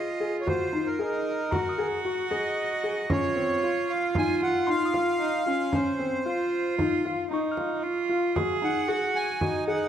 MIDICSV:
0, 0, Header, 1, 6, 480
1, 0, Start_track
1, 0, Tempo, 526316
1, 428, Time_signature, 5, 2, 24, 8
1, 9014, End_track
2, 0, Start_track
2, 0, Title_t, "Tine electric piano"
2, 0, Program_c, 0, 4
2, 1378, Note_on_c, 0, 82, 45
2, 1543, Note_on_c, 0, 87, 42
2, 2809, Note_off_c, 0, 82, 0
2, 2951, Note_off_c, 0, 87, 0
2, 4258, Note_on_c, 0, 84, 60
2, 4427, Note_on_c, 0, 87, 42
2, 5689, Note_off_c, 0, 84, 0
2, 5834, Note_off_c, 0, 87, 0
2, 6689, Note_on_c, 0, 85, 47
2, 6854, Note_on_c, 0, 89, 42
2, 7842, Note_off_c, 0, 85, 0
2, 7984, Note_off_c, 0, 89, 0
2, 9014, End_track
3, 0, Start_track
3, 0, Title_t, "Accordion"
3, 0, Program_c, 1, 21
3, 0, Note_on_c, 1, 75, 76
3, 337, Note_off_c, 1, 75, 0
3, 371, Note_on_c, 1, 73, 54
3, 431, Note_off_c, 1, 73, 0
3, 431, Note_on_c, 1, 72, 82
3, 784, Note_on_c, 1, 70, 70
3, 800, Note_off_c, 1, 72, 0
3, 1710, Note_off_c, 1, 70, 0
3, 2101, Note_on_c, 1, 75, 80
3, 2839, Note_on_c, 1, 73, 88
3, 2846, Note_off_c, 1, 75, 0
3, 3555, Note_on_c, 1, 77, 78
3, 3575, Note_off_c, 1, 73, 0
3, 3799, Note_off_c, 1, 77, 0
3, 3808, Note_on_c, 1, 80, 94
3, 4022, Note_off_c, 1, 80, 0
3, 4039, Note_on_c, 1, 78, 89
3, 4281, Note_off_c, 1, 78, 0
3, 4282, Note_on_c, 1, 77, 99
3, 5238, Note_on_c, 1, 72, 75
3, 5264, Note_off_c, 1, 77, 0
3, 6157, Note_off_c, 1, 72, 0
3, 7880, Note_on_c, 1, 78, 91
3, 8351, Note_on_c, 1, 80, 88
3, 8368, Note_off_c, 1, 78, 0
3, 8796, Note_off_c, 1, 80, 0
3, 8827, Note_on_c, 1, 78, 84
3, 9014, Note_off_c, 1, 78, 0
3, 9014, End_track
4, 0, Start_track
4, 0, Title_t, "Cello"
4, 0, Program_c, 2, 42
4, 0, Note_on_c, 2, 65, 74
4, 912, Note_on_c, 2, 63, 81
4, 926, Note_off_c, 2, 65, 0
4, 1380, Note_on_c, 2, 66, 85
4, 1394, Note_off_c, 2, 63, 0
4, 2823, Note_on_c, 2, 65, 83
4, 2837, Note_off_c, 2, 66, 0
4, 4732, Note_off_c, 2, 65, 0
4, 4737, Note_on_c, 2, 63, 78
4, 4966, Note_off_c, 2, 63, 0
4, 4981, Note_on_c, 2, 61, 79
4, 5668, Note_off_c, 2, 61, 0
4, 5705, Note_on_c, 2, 65, 88
4, 6631, Note_off_c, 2, 65, 0
4, 6663, Note_on_c, 2, 63, 76
4, 7142, Note_on_c, 2, 65, 87
4, 7156, Note_off_c, 2, 63, 0
4, 7622, Note_on_c, 2, 68, 89
4, 7636, Note_off_c, 2, 65, 0
4, 8101, Note_on_c, 2, 66, 86
4, 8115, Note_off_c, 2, 68, 0
4, 8581, Note_on_c, 2, 63, 89
4, 8595, Note_off_c, 2, 66, 0
4, 9014, Note_off_c, 2, 63, 0
4, 9014, End_track
5, 0, Start_track
5, 0, Title_t, "Felt piano"
5, 0, Program_c, 3, 0
5, 186, Note_on_c, 3, 68, 66
5, 361, Note_off_c, 3, 68, 0
5, 424, Note_on_c, 3, 66, 71
5, 600, Note_off_c, 3, 66, 0
5, 663, Note_on_c, 3, 63, 64
5, 839, Note_off_c, 3, 63, 0
5, 904, Note_on_c, 3, 68, 68
5, 1254, Note_off_c, 3, 68, 0
5, 1386, Note_on_c, 3, 66, 66
5, 1561, Note_off_c, 3, 66, 0
5, 1626, Note_on_c, 3, 68, 72
5, 1801, Note_off_c, 3, 68, 0
5, 1868, Note_on_c, 3, 66, 68
5, 2043, Note_off_c, 3, 66, 0
5, 2106, Note_on_c, 3, 68, 63
5, 2455, Note_off_c, 3, 68, 0
5, 2587, Note_on_c, 3, 68, 63
5, 2762, Note_off_c, 3, 68, 0
5, 2827, Note_on_c, 3, 61, 77
5, 3002, Note_off_c, 3, 61, 0
5, 3063, Note_on_c, 3, 60, 65
5, 3239, Note_off_c, 3, 60, 0
5, 3311, Note_on_c, 3, 65, 70
5, 3659, Note_off_c, 3, 65, 0
5, 3792, Note_on_c, 3, 63, 70
5, 3965, Note_off_c, 3, 63, 0
5, 4032, Note_on_c, 3, 65, 74
5, 4205, Note_off_c, 3, 65, 0
5, 4263, Note_on_c, 3, 63, 72
5, 4439, Note_off_c, 3, 63, 0
5, 4501, Note_on_c, 3, 65, 69
5, 4852, Note_off_c, 3, 65, 0
5, 4982, Note_on_c, 3, 65, 64
5, 5159, Note_off_c, 3, 65, 0
5, 5221, Note_on_c, 3, 61, 74
5, 5398, Note_off_c, 3, 61, 0
5, 5464, Note_on_c, 3, 60, 64
5, 5640, Note_off_c, 3, 60, 0
5, 5705, Note_on_c, 3, 65, 67
5, 6055, Note_off_c, 3, 65, 0
5, 6185, Note_on_c, 3, 63, 68
5, 6361, Note_off_c, 3, 63, 0
5, 6430, Note_on_c, 3, 65, 71
5, 6604, Note_off_c, 3, 65, 0
5, 6666, Note_on_c, 3, 63, 72
5, 6841, Note_off_c, 3, 63, 0
5, 6905, Note_on_c, 3, 65, 63
5, 7255, Note_off_c, 3, 65, 0
5, 7382, Note_on_c, 3, 65, 65
5, 7558, Note_off_c, 3, 65, 0
5, 7623, Note_on_c, 3, 66, 72
5, 7799, Note_off_c, 3, 66, 0
5, 7859, Note_on_c, 3, 63, 63
5, 8037, Note_off_c, 3, 63, 0
5, 8103, Note_on_c, 3, 68, 67
5, 8454, Note_off_c, 3, 68, 0
5, 8584, Note_on_c, 3, 66, 66
5, 8759, Note_off_c, 3, 66, 0
5, 8824, Note_on_c, 3, 68, 73
5, 8999, Note_off_c, 3, 68, 0
5, 9014, End_track
6, 0, Start_track
6, 0, Title_t, "Frame drum"
6, 433, Note_on_c, 9, 64, 51
6, 524, Note_off_c, 9, 64, 0
6, 911, Note_on_c, 9, 64, 18
6, 1002, Note_off_c, 9, 64, 0
6, 1388, Note_on_c, 9, 64, 57
6, 1480, Note_off_c, 9, 64, 0
6, 1872, Note_on_c, 9, 64, 17
6, 1963, Note_off_c, 9, 64, 0
6, 2108, Note_on_c, 9, 64, 45
6, 2199, Note_off_c, 9, 64, 0
6, 2826, Note_on_c, 9, 64, 60
6, 2917, Note_off_c, 9, 64, 0
6, 3309, Note_on_c, 9, 64, 17
6, 3400, Note_off_c, 9, 64, 0
6, 3785, Note_on_c, 9, 64, 54
6, 3876, Note_off_c, 9, 64, 0
6, 4267, Note_on_c, 9, 64, 16
6, 4358, Note_off_c, 9, 64, 0
6, 4506, Note_on_c, 9, 64, 43
6, 4598, Note_off_c, 9, 64, 0
6, 5223, Note_on_c, 9, 64, 52
6, 5314, Note_off_c, 9, 64, 0
6, 6192, Note_on_c, 9, 64, 49
6, 6283, Note_off_c, 9, 64, 0
6, 6907, Note_on_c, 9, 64, 41
6, 6998, Note_off_c, 9, 64, 0
6, 7626, Note_on_c, 9, 64, 53
6, 7717, Note_off_c, 9, 64, 0
6, 8111, Note_on_c, 9, 64, 17
6, 8202, Note_off_c, 9, 64, 0
6, 8584, Note_on_c, 9, 64, 52
6, 8675, Note_off_c, 9, 64, 0
6, 9014, End_track
0, 0, End_of_file